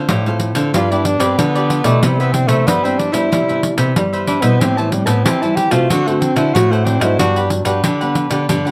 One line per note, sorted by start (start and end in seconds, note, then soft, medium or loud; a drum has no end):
0.09 0.71 A2 medium
0.09 0.51 A2 medium
0.09 0.24 D4 medium
0.09 0.25 A4 medium
0.09 0.25 C5 medium
0.09 0.25 F5 medium
0.09 pandeiro medium
0.26 0.72 A3 medium
0.26 0.72 C4 medium
0.26 0.72 F4 medium
0.26 0.55 A4 medium
0.26 0.54 C5 medium
0.26 0.54 F5 medium
0.26 pandeiro soft
0.40 pandeiro medium
0.55 0.70 D3 medium
0.55 0.72 A4 soft
0.55 0.72 C5 soft
0.55 0.71 F5 medium
0.55 pandeiro medium
0.73 1.15 G2 medium
0.73 1.36 G2 soft
0.73 0.84 F3 medium
0.73 0.84 B3 medium
0.73 0.85 D4 medium
0.73 0.89 F4 soft
0.73 0.92 F4 medium
0.73 0.89 G4 medium
0.73 0.89 B4 medium
0.73 0.89 D5 medium
0.73 pandeiro medium
0.91 1.34 F3 medium
0.91 1.34 B3 medium
0.91 1.35 D4 medium
0.91 1.07 E4 medium
0.91 1.04 G4 soft
0.91 1.04 B4 soft
0.91 1.05 D5 medium
0.91 pandeiro soft
1.05 1.21 D4 loud
1.05 muted cavaquinho stroke soft
1.05 pandeiro medium
1.19 1.35 G2 medium
1.19 1.40 C4 medium
1.19 1.53 G4 medium
1.19 1.52 B4 medium
1.19 1.52 D5 medium
1.19 pandeiro medium
1.38 1.99 D3 medium
1.38 1.80 D3 medium
1.38 1.69 F3 medium
1.38 1.86 B3 medium
1.38 1.69 B3 medium
1.38 1.69 D4 medium
1.38 pandeiro medium
1.55 1.69 G4 medium
1.55 1.69 B4 medium
1.55 1.70 D5 medium
1.55 pandeiro soft
1.70 1.85 F4 medium
1.70 1.85 G4 medium
1.70 1.84 B4 medium
1.70 1.83 D5 medium
1.70 pandeiro medium
1.84 1.99 B2 medium
1.84 2.29 E3 medium
1.84 2.05 A3 medium
1.84 2.29 B3 medium
1.84 2.29 D4 medium
1.84 2.01 G4 medium
1.84 2.01 B4 medium
1.84 2.00 D5 medium
1.84 pandeiro medium
2.03 2.64 C3 medium
2.03 2.44 C3 medium
2.03 2.21 G3 medium
2.03 2.18 E4 soft
2.03 2.18 B4 medium
2.03 2.18 C5 medium
2.03 2.19 E5 medium
2.03 pandeiro medium
2.20 2.35 B3 medium
2.20 2.33 B4 medium
2.20 2.33 C5 medium
2.20 2.33 E5 medium
2.20 pandeiro soft
2.33 2.65 E3 medium
2.33 2.65 B3 soft
2.33 2.49 C4 medium
2.33 2.65 D4 medium
2.33 muted cavaquinho stroke soft
2.33 pandeiro medium
2.48 2.63 C3 medium
2.48 2.68 A3 medium
2.48 2.66 B4 medium
2.48 2.65 C5 medium
2.48 2.65 E5 medium
2.48 pandeiro medium
2.67 3.28 G2 medium
2.67 3.08 G3 medium
2.67 2.86 B3 medium
2.67 2.82 E4 medium
2.67 2.82 B4 medium
2.67 2.83 C5 medium
2.67 2.83 E5 medium
2.67 pandeiro medium
2.84 3.11 E3 medium
2.84 3.11 B3 medium
2.84 3.00 C4 medium
2.84 3.11 D4 medium
2.84 3.12 B4 medium
2.84 3.12 C5 medium
2.84 3.11 E5 medium
2.84 pandeiro soft
2.98 3.15 D4 medium
2.98 pandeiro medium
3.12 3.42 E3 medium
3.12 3.28 G3 medium
3.12 3.42 B3 medium
3.12 3.42 D4 medium
3.12 3.79 E4 medium
3.12 3.30 B4 medium
3.12 3.29 C5 medium
3.12 3.29 E5 medium
3.12 pandeiro medium
3.31 3.93 C3 medium
3.31 3.73 G3 medium
3.31 3.47 E4 medium
3.31 3.47 B4 medium
3.31 3.47 C5 medium
3.31 3.47 E5 medium
3.31 pandeiro medium
3.48 3.92 E3 medium
3.48 3.92 B3 medium
3.48 3.93 D4 medium
3.48 3.62 B4 soft
3.48 3.62 C5 soft
3.48 3.62 E5 soft
3.48 pandeiro soft
3.62 muted cavaquinho stroke soft
3.62 pandeiro medium
3.77 3.93 C3 medium
3.77 4.11 B4 medium
3.77 4.10 C5 medium
3.77 4.10 E5 medium
3.77 pandeiro medium
3.96 4.58 G2 medium
3.96 4.40 E3 medium
3.96 4.38 G3 medium
3.96 4.41 B3 medium
3.96 4.41 D4 medium
3.96 pandeiro medium
4.13 4.27 B4 medium
4.13 4.27 C5 medium
4.13 4.28 E5 medium
4.13 pandeiro soft
4.27 4.43 D4 medium
4.27 4.43 E4 medium
4.27 4.42 B4 medium
4.27 4.42 C5 medium
4.27 4.41 E5 medium
4.27 pandeiro medium
4.42 4.57 B2 medium
4.42 4.87 G3 medium
4.42 4.62 B3 medium
4.42 4.88 C4 medium
4.42 4.88 E4 medium
4.42 4.59 B4 soft
4.42 4.59 C5 medium
4.42 4.58 E5 medium
4.42 pandeiro medium
4.60 5.02 A2 loud
4.60 5.23 A2 medium
4.60 4.79 C4 medium
4.60 4.76 G4 soft
4.60 4.76 C5 medium
4.60 4.76 E5 medium
4.60 4.76 A5 medium
4.60 pandeiro medium
4.77 4.93 E3 medium
4.77 4.91 C5 medium
4.77 4.91 E5 medium
4.77 4.91 A5 medium
4.77 pandeiro soft
4.92 5.08 G3 medium
4.92 5.36 G3 medium
4.92 5.36 C4 medium
4.92 5.37 E4 medium
4.92 muted cavaquinho stroke soft
4.92 pandeiro medium
5.06 5.22 A2 medium
5.06 5.26 B3 medium
5.06 5.23 C5 soft
5.06 5.23 E5 medium
5.06 5.23 A5 medium
5.06 pandeiro medium
5.25 5.67 E3 medium
5.25 5.88 E3 medium
5.25 5.43 C4 medium
5.25 5.40 G4 medium
5.25 5.40 C5 medium
5.25 5.41 E5 medium
5.25 5.41 A5 medium
5.25 pandeiro medium
5.42 5.70 G3 medium
5.42 5.70 C4 medium
5.42 5.57 E4 medium
5.42 5.70 E4 medium
5.42 5.71 C5 medium
5.42 5.71 E5 medium
5.42 5.70 A5 medium
5.42 pandeiro soft
5.56 5.73 G4 loud
5.56 pandeiro medium
5.71 5.86 C3 medium
5.71 6.00 A3 medium
5.71 6.00 C4 medium
5.71 5.92 F4 medium
5.71 6.01 F#4 medium
5.71 5.88 C5 soft
5.71 5.88 E5 medium
5.71 5.87 A5 medium
5.71 pandeiro medium
5.90 6.31 D3 medium
5.90 6.52 D3 medium
5.90 6.05 D4 medium
5.90 6.09 F#4 loud
5.90 6.05 A4 medium
5.90 6.05 C5 medium
5.90 6.05 F#5 medium
5.90 pandeiro medium
6.07 6.22 A3 medium
6.07 6.51 A3 medium
6.07 6.51 C4 medium
6.07 6.51 F#4 medium
6.07 6.20 A4 soft
6.07 6.20 C5 soft
6.07 6.20 F#5 medium
6.07 pandeiro soft
6.20 6.37 C4 medium
6.20 muted cavaquinho stroke soft
6.20 pandeiro medium
6.36 6.51 D3 medium
6.36 6.56 E4 medium
6.36 6.69 A4 medium
6.36 6.69 C5 medium
6.36 6.68 F#5 medium
6.36 pandeiro medium
6.54 7.16 A2 medium
6.54 6.96 A2 loud
6.54 6.98 A3 medium
6.54 6.98 C4 medium
6.54 6.73 F#4 medium
6.54 6.99 F#4 medium
6.54 pandeiro medium
6.71 6.86 A3 medium
6.71 6.85 A4 soft
6.71 6.85 C5 medium
6.71 6.85 F#5 medium
6.71 pandeiro soft
6.85 7.02 C4 medium
6.85 7.01 D4 soft
6.85 7.00 A4 soft
6.85 7.00 C5 medium
6.85 6.99 F#5 medium
6.85 pandeiro medium
7.00 7.16 G#2 medium
7.00 7.45 F#3 medium
7.00 7.45 B3 medium
7.00 7.45 D4 medium
7.00 7.18 E4 medium
7.00 7.17 A4 medium
7.00 7.17 C5 medium
7.00 7.16 F#5 medium
7.00 pandeiro medium
7.18 7.61 G2 loud
7.18 7.81 G2 medium
7.18 7.34 D4 soft
7.18 7.39 F#4 medium
7.18 7.34 G4 medium
7.18 7.34 B4 medium
7.18 7.34 F#5 medium
7.18 pandeiro medium
7.36 7.49 G4 medium
7.36 7.49 B4 medium
7.36 7.49 F#5 medium
7.36 pandeiro soft
7.50 7.82 F#3 medium
7.50 7.82 B3 soft
7.50 7.82 D4 medium
7.50 muted cavaquinho stroke soft
7.50 pandeiro medium
7.65 7.80 G2 medium
7.65 7.82 G4 medium
7.65 7.82 B4 medium
7.65 7.81 F#5 medium
7.65 pandeiro medium
7.84 8.26 D3 medium
7.84 8.46 D3 medium
7.84 7.99 D4 medium
7.84 7.99 G4 medium
7.84 8.00 B4 medium
7.84 8.00 F#5 medium
7.84 pandeiro medium
8.01 8.61 B3 medium
8.01 8.61 D4 medium
8.01 8.30 G4 medium
8.01 8.29 B4 medium
8.01 8.28 F#5 medium
8.01 pandeiro soft
8.15 pandeiro medium
8.30 8.45 D3 medium
8.30 8.47 G4 soft
8.30 8.46 B4 medium
8.30 8.46 F#5 medium
8.30 pandeiro medium
8.49 8.71 G2 medium
8.49 8.71 D3 medium
8.49 8.64 D4 soft
8.49 8.64 G4 medium
8.49 8.64 B4 medium
8.49 8.64 F#5 medium
8.49 pandeiro medium
8.65 8.71 F#3 medium
8.65 8.71 B3 medium
8.65 8.71 D4 medium
8.65 8.71 G4 soft
8.65 8.71 B4 soft
8.65 8.71 F#5 medium
8.65 pandeiro soft